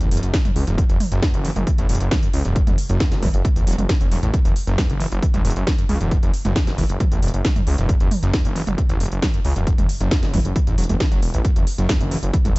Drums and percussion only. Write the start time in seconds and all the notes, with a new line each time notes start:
0.01 closed hi-hat
0.11 open hi-hat
0.17 closed hi-hat
0.23 closed hi-hat
0.34 kick, snare, closed hi-hat
0.45 closed hi-hat, mid tom
0.56 open hi-hat
0.67 closed hi-hat
0.78 kick, closed hi-hat
0.90 closed hi-hat
1.00 mid tom, open hi-hat
1.12 closed hi-hat
1.23 kick, snare, closed hi-hat
1.34 closed hi-hat
1.45 open hi-hat
1.56 closed hi-hat, mid tom
1.67 kick, closed hi-hat
1.78 closed hi-hat
1.89 open hi-hat
1.95 closed hi-hat
2.00 closed hi-hat
2.11 kick, snare, closed hi-hat, mid tom
2.23 closed hi-hat
2.33 open hi-hat
2.45 closed hi-hat
2.56 kick, closed hi-hat
2.67 closed hi-hat, mid tom
2.78 open hi-hat
2.89 closed hi-hat
3.00 kick, snare, closed hi-hat
3.12 snare, closed hi-hat
3.23 kick, mid tom, open hi-hat
3.34 closed hi-hat
3.45 kick, closed hi-hat
3.56 closed hi-hat
3.67 open hi-hat
3.73 closed hi-hat
3.78 closed hi-hat, mid tom
3.89 kick, snare, closed hi-hat
4.01 closed hi-hat
4.12 open hi-hat
4.23 closed hi-hat
4.34 kick, closed hi-hat
4.45 closed hi-hat
4.56 open hi-hat
4.67 closed hi-hat
4.78 kick, snare, closed hi-hat, mid tom
4.90 closed hi-hat
5.00 open hi-hat
5.12 closed hi-hat
5.22 kick, closed hi-hat
5.34 closed hi-hat, mid tom
5.45 open hi-hat
5.50 closed hi-hat
5.56 closed hi-hat
5.67 kick, snare, closed hi-hat
5.78 closed hi-hat
5.89 mid tom, open hi-hat
6.01 closed hi-hat
6.11 kick, closed hi-hat
6.23 closed hi-hat
6.34 open hi-hat
6.45 closed hi-hat, mid tom
6.56 kick, snare, closed hi-hat
6.67 snare, closed hi-hat
6.78 kick, open hi-hat
6.89 closed hi-hat
7.00 kick, closed hi-hat, mid tom
7.12 closed hi-hat
7.22 open hi-hat
7.28 closed hi-hat
7.34 closed hi-hat
7.45 kick, snare, closed hi-hat
7.56 closed hi-hat, mid tom
7.67 open hi-hat
7.78 closed hi-hat
7.89 kick, closed hi-hat
8.00 closed hi-hat
8.11 mid tom, open hi-hat
8.23 closed hi-hat
8.34 kick, snare, closed hi-hat
8.45 closed hi-hat
8.56 open hi-hat
8.67 closed hi-hat, mid tom
8.78 kick, closed hi-hat
8.89 closed hi-hat
9.00 open hi-hat
9.06 closed hi-hat
9.12 closed hi-hat
9.22 kick, snare, closed hi-hat, mid tom
9.34 closed hi-hat
9.45 open hi-hat
9.56 closed hi-hat
9.67 kick, closed hi-hat
9.78 closed hi-hat, mid tom
9.89 open hi-hat
10.01 closed hi-hat
10.11 kick, snare, closed hi-hat
10.23 snare, closed hi-hat
10.34 kick, mid tom, open hi-hat
10.45 closed hi-hat
10.56 kick, closed hi-hat
10.67 closed hi-hat
10.78 open hi-hat
10.84 closed hi-hat
10.89 closed hi-hat, mid tom
11.00 kick, snare, closed hi-hat
11.12 closed hi-hat
11.22 open hi-hat
11.34 closed hi-hat
11.45 kick, closed hi-hat
11.56 closed hi-hat
11.67 open hi-hat
11.78 closed hi-hat
11.89 kick, snare, closed hi-hat, mid tom
12.01 closed hi-hat
12.11 open hi-hat
12.23 closed hi-hat
12.34 kick, closed hi-hat
12.45 closed hi-hat, mid tom
12.56 open hi-hat